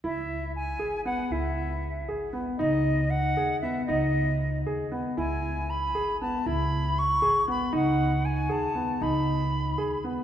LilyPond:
<<
  \new Staff \with { instrumentName = "Flute" } { \time 5/8 \key cis \minor \tempo 4 = 117 e''4 gis''4 fis''8 | e''4. r4 | dis''4 fis''4 e''8 | dis''4. r4 |
gis''4 b''4 a''8 | b''4 cis'''4 b''8 | fis''4 gis''8 a''4 | b''2 r8 | }
  \new Staff \with { instrumentName = "Grand piano" } { \time 5/8 \key cis \minor e'4 r8 gis'8 b8 | e'4 r8 gis'8 b8 | dis'4 r8 gis'8 b8 | dis'4 r8 gis'8 b8 |
e'4 r8 gis'8 b8 | e'4 r8 gis'8 b8 | dis'4 r8 gis'8 b8 | dis'4 r8 gis'8 b8 | }
  \new Staff \with { instrumentName = "Upright bass" } { \clef bass \time 5/8 \key cis \minor cis,4. gis,,4 | cis,4. gis,,4 | cis,4. dis,4 | cis,4. dis,4 |
cis,4. gis,,4 | cis,4. gis,,4 | cis,4. dis,4 | cis,4. dis,4 | }
>>